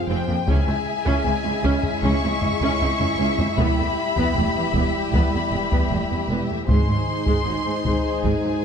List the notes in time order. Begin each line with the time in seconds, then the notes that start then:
Already playing: C4 F4 G#4 C5
0.08 F1 F2 C4 G5
0.28 F2 A#3, taiko low
0.47 C#2 G#3 C#4 E4 G#4 E5 G#5, taiko
0.67 C#2 C4
1.06 C#2 C#4, taiko
1.24 C#2 C4
1.44 C#2 C#4
1.63 C#2 C#4, taiko
1.83 taiko low
2.02 C#2 C#4 C#6, taiko
2.23 C#2 C4
2.41 C#2 C#4, taiko low
2.61 C#2 C#4, taiko
2.81 C#2 C4
3.00 C#2 C#4, taiko low
3.18 C#2 C#4
3.39 C#2 C4, taiko low
3.57 E1 E2 G3 B3 G4 B5, taiko
3.78 E2 A3
4.16 E2 B3, taiko
4.35 E1 E2 A3
4.56 E2 B3
4.74 E1 E2 B3, taiko
5.12 E1 E2 B3 B5, taiko
5.33 E2 A3
5.51 E1 E2 B3
5.71 E2 B3, taiko
5.90 E1 E2 A3
6.11 E2 B3
6.29 E1 E2 B3
6.50 E2 A3
6.68 G#1 G#2 G#3 D#4 G#4 C5 C6, taiko
6.88 G#2 F#3
7.27 G#2 G#3, taiko
7.46 G#1 G#2 F#3
7.66 G#2 G#3
7.85 G#1 G#2 G#3, taiko
8.24 G#1 G#2 G#3 G#5, taiko
8.44 G#2 F#3